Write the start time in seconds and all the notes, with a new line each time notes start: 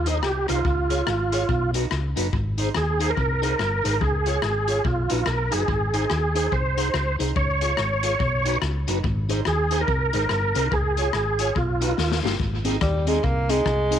Already playing: D#2
0.06 D#4 G#4 C5, closed hi-hat
0.23 C2 G4 G#4 C5, cross-stick
0.48 C2 D#4 F4 G#4 C5, cross-stick, closed hi-hat
0.65 C#2, kick
0.90 F4 G#4 C#5, closed hi-hat
1.07 G#1, cross-stick
1.32 F4 G#4 C#5, closed hi-hat
1.49 B1, kick
1.74 D#4 F#4 B4, closed hi-hat
1.91 C#2, cross-stick
2.16 F#1 D#4 F#4 B4, closed hi-hat
2.33 G#1, kick
2.58 D#4 G#4 C5, closed hi-hat
2.75 D#2 G#4, cross-stick
3.00 D#4 G#4 C5, closed hi-hat
3.10 A#4
3.17 C2, kick
3.42 D#4 G#4 C5, closed hi-hat
3.59 G1 G#4 C5, cross-stick
3.84 G#1 D#4 G#4 C5, closed hi-hat
4.01 C#2 G#4, kick
4.26 F4 G#4 C#5, closed hi-hat
4.42 G#1, cross-stick
4.68 F4 G#4 C#5, closed hi-hat
4.85 B1 F4, kick
5.10 A#1 D#4 F#4 B4, closed hi-hat
5.26 B1 A#4, cross-stick
5.51 F#1 D#4 F#4 G#4 B4, closed hi-hat
5.68 G#1, kick
5.93 D#4 G#4 C5, closed hi-hat
6.10 D#2, cross-stick
6.35 D#4 G#4 C5, closed hi-hat
6.52 C2 C5, kick
6.77 D#4 G#4 C5, closed hi-hat
6.94 C#2 G#4 C5, cross-stick
7.19 C2 D#4 G#4 C5, closed hi-hat
7.36 C#2 C#5, kick
7.61 F4 G#4 C#5, closed hi-hat
7.77 G#1, cross-stick
8.03 F4 G#4 C#5, closed hi-hat
8.20 B1, kick
8.45 D#4 F#4 B4, closed hi-hat
8.62 C#2, cross-stick
8.87 F#1 D#4 F#4 B4, closed hi-hat
9.04 G#1, kick
9.29 D#4 G#4 C5, closed hi-hat
9.45 D#2 G#4, cross-stick
9.71 D#4 G#4 C5, closed hi-hat
9.81 A#4
9.88 C2, kick
10.13 G#1 D#4 G#4 C5, closed hi-hat
10.29 G1 G#4 C5, cross-stick
10.55 C2 D#4 G#4 C5, closed hi-hat
10.72 C#2 G#4, kick
10.97 F4 G#4 C#5, closed hi-hat
11.13 G#1, cross-stick
11.39 F4 G#4 C#5, closed hi-hat
11.56 B1 F4, kick
11.81 D#4 F#4 B4, closed hi-hat
11.98 D#2, snare
12.12 snare
12.22 G1 A#3 D#4 F4 G4, snare
12.40 G#1, kick
12.64 C4 D#4 G#4, closed hi-hat
12.81 D#2 G3, kick, cross-stick
13.06 G#3 C4 D#4 G#4, closed hi-hat
13.24 C2 A#3, kick
13.49 G#3 C4 D#4 G#4, closed hi-hat
13.65 C2 D#4 G#4, kick, cross-stick
13.90 C4 D#4 G#4, closed hi-hat